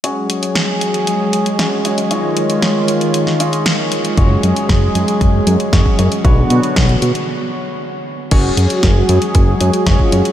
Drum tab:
CC |----------------|----------------|----------------|----------------|
HH |x-xxx-xxx-xxx-xx|x-xxx-xxx-xxx-xx|x-xxx-xxx-xxx-xx|x-xxxxxx--------|
SD |----o-------o---|----o----o--o---|----o-------o---|----o-----------|
BD |----------------|----------------|o---o---o---oo--|o---o-----------|

CC |x---------------|
HH |x-xxx-xxx-xxx-xx|
SD |----o-------o---|
BD |o---o---o---oo--|